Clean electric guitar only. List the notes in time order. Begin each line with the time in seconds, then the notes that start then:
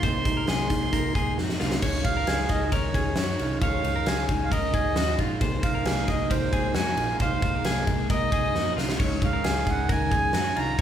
0.03 C5
0.37 A#4
0.48 G#4
0.93 A#4
1.15 G#4
1.38 F#4
1.60 F4
1.82 C#5
2.17 A#4
2.27 G#4
2.72 A#4
2.95 G#4
3.17 F#4
3.41 F4
3.63 C#5
3.96 A#4
4.07 G#4
4.52 A#4
4.74 G#4
4.97 F#4
5.20 F4
5.41 C5
5.75 A#4
5.86 G#4
6.30 A#4
6.53 G#4
6.75 F#4
6.98 F4
7.22 C5
7.55 A#4
7.65 G#4
8.10 A#4
8.33 G#4
8.55 F#4
8.77 F4
8.99 C#5
9.33 A#4
9.44 G#4
9.89 A#4
10.11 G#4
10.34 F#4
10.56 F4